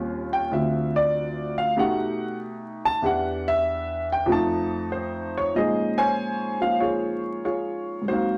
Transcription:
Already playing: D#2 A#2 G3 C4 C#4 F4
0.33 G5
0.51 D2 D3 C4 F4 E5
0.96 D5
1.58 F5
1.77 B2 A3 D#4 G4 F#5
2.85 A5
3.02 E2 E3 D4 G4
3.06 F#5
3.48 E5
4.12 G5
4.26 F2 F3 A3
4.30 D#4 A5
4.92 C5
5.38 C#5
5.55 A#2 F3 G#3 C#4 D#4 G#4 C5 D#5
5.98 C5 C#5 G#5
6.61 F3 A#3 F5
6.80 F4 G#4 C#5
7.45 F4 G#4 C#5
8.02 G#2 F#3
8.08 A#3 C4 D#4 F#4 C5
8.13 F5

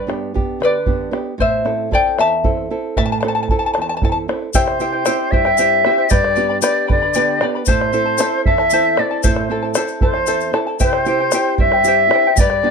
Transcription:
Already playing: G2 B4 D5
0.07 B3 D4 G4, bombo rim
0.34 B3 D4 G4, bombo low
0.60 D3 B4, bombo rim
0.65 D5
0.86 B3 D4 G4, bombo low
1.00 bombo rim
1.11 B3 D4 G4, bombo rim
1.38 A2 C5 E5, bombo rim, bombo low
1.65 C4 E4 A4, bombo rim
1.91 C4 E4 A4 D5 G5, bombo low
2.18 E2 E5 A5, bombo rim
2.44 C4 E4 A4, bombo low
2.57 bombo rim
2.70 C4 E4 A4
2.97 A2 E5 A5, bombo low
3.06 A5
3.12 A5
3.21 C4 E4 A5, bombo rim
3.25 A4 A5
3.35 A5
3.43 A5
3.49 C4 E4 A4 A5, bombo low
3.59 A5
3.66 A5
3.74 E2 A5, bombo rim
3.82 A5
3.89 A5
3.97 A5
4.02 C4 E4 A4 A5, bombo rim, bombo low
4.12 A5
4.28 C4 E4 A4, bombo rim
4.42 bombo rim
4.54 C3 E4 G4 C5 D5 E5 G5, bombo low, shaker
4.59 C5
4.68 bombo rim
4.80 C4 E4 G4 C5 E5 G5, shaker
4.92 E4 C5 G5
5.05 C4 E4 G4 C5 E5 G5, bombo rim, shaker
5.31 G2 E4 C5 E5 G5, bombo low
5.45 E4 C5 G5, bombo rim
5.58 C4 E4 G4 C5 E5 G5, shaker
5.85 C4 E4 G4 C5 E5 G5, bombo rim
5.98 E4 C5 G5
6.10 G2 G4 B4 D5 G5 B5, bombo low, shaker
6.24 bombo rim
6.36 B3 D4 G4 B4 D5 G5 B5, shaker
6.49 B4 D5 B5
6.62 B3 D4 G4 B4 D5 G5 B5, bombo rim, shaker
6.87 D3 B4 D5 G5 B5, bombo low
7.02 B4 D5 B5
7.14 B3 D4 G4 B4 D5 G5 B5, shaker
7.41 B3 D4 G4 B4 D5 G5 B5, bombo rim
7.55 B4 D5 B5
7.66 A2 E4 A4 C5 E5 A5, bombo low, shaker
7.81 bombo rim
7.93 C4 E4 A4 E5 A5, shaker
8.06 E4 A4 A5
8.18 C4 E4 A4 C5 E5 A5, bombo rim, shaker
8.45 E2 E4 A4 E5 A5, bombo low
8.58 E4 A4 A5, bombo rim
8.70 C4 E4 A4 C5 E5 A5, shaker
8.97 C4 E4 A4 D5 E5 A5, bombo rim
9.11 E4 A4 A5
9.23 A2 E4 A4 C5 E5 A5, bombo low, shaker
9.36 bombo rim
9.50 C4 E4 A4 E5 A5
9.62 E4 A4 A5, bombo rim
9.75 C4 E4 A4 C5 E5 A5, bombo rim, shaker
9.88 shaker
10.01 E2 E4 A4 C5 E5 A5, bombo low
10.14 E4 A4 A5, bombo rim
10.27 C4 E4 A4 C5 E5 A5, shaker
10.41 shaker
10.53 C4 E4 A4 E5 A5, bombo rim
10.67 E4 A4 A5
10.80 C3 E4 G4 C5 E5 G5, bombo low, shaker
10.93 bombo rim
11.06 C4 E4 G4 C5 E5 G5, shaker
11.20 E4 C5 G5
11.31 C4 E4 G4 C5 E5 G5, bombo rim, shaker
11.58 G2 E4 C5 E5 G5, bombo low
11.72 E4 C5 G5, bombo rim
11.84 C4 E4 G4 E5, shaker
11.88 E4 C5 G5
12.09 C4 E4 G4, bombo rim
12.13 E4 C5 E5 G5
12.27 E4 C5 G5
12.36 G2 G4 D5, bombo low, shaker
12.40 B4 D5 G5 B5
12.50 bombo rim
12.63 B3 D4 G4 B4 D5 G5 B5

